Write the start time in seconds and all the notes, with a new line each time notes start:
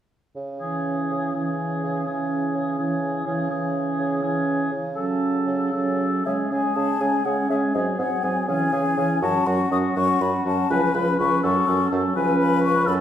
0.36 C#3
0.60 E3 C#4 G#4
1.11 C#3
1.35 E3 C#4 G#4
1.83 C#3
2.06 E3 C#4 G#4
2.55 C#3
2.79 E3 C#4 G#4
3.26 C#3 E3 C#4 G#4
3.50 E3 C#4 G#4
3.98 C#3
4.23 E3 C#4 G#4
4.72 C#3
4.96 F#3 C#4 A4
5.46 C#3
5.72 F#3 C#4 A4
6.25 C#3 G#3 C#4 G#4 E5
6.51 C#3 G#3 C#4 G#4 G#5
6.75 C#3 G#3 C#4 G#4 A5
7.00 C#3 G#3 C#4 G#4 G#5
7.25 C#3 G#3 C#4 G#4 F#5
7.49 C#3 G#3 C#4 G#4 E5
7.74 G#2 F#3 C4 G#4 D#5
7.99 G#2 F#3 C4 G#4 F#5
8.23 G#2 F#3 C4 G#4 G#5
8.48 C#3 E3 C#4 G#4 G#5
8.72 C#3 E3 C#4 G#4
8.97 C#3 E3 C#4 G#4
9.22 F#2 F#3 C#4 F#4 A5
9.46 F#2 F#3 C#4 F#4 C#6
9.71 F#2 F#3 C#4 F#4 D#6
9.96 F#2 F#3 C#4 F#4 C#6
10.21 F#2 F#3 C#4 F#4 B5
10.45 F#2 F#3 C#4 F#4 A5
10.70 C#2 F3 C#4 B4 G#5
10.94 C#2 F3 C#4 B4 B5
11.19 C#2 F3 C#4 B4 C#6
11.43 F#2 F#3 C#4 A4 C#6
11.67 F#2 F#3 C#4 A4
11.91 F#2 F#3 C#4 A4
12.15 C#2 F3 C#4 B4 G#5
12.40 B5
12.64 C#6
12.86 F#2 F#3 C#4 A4 B5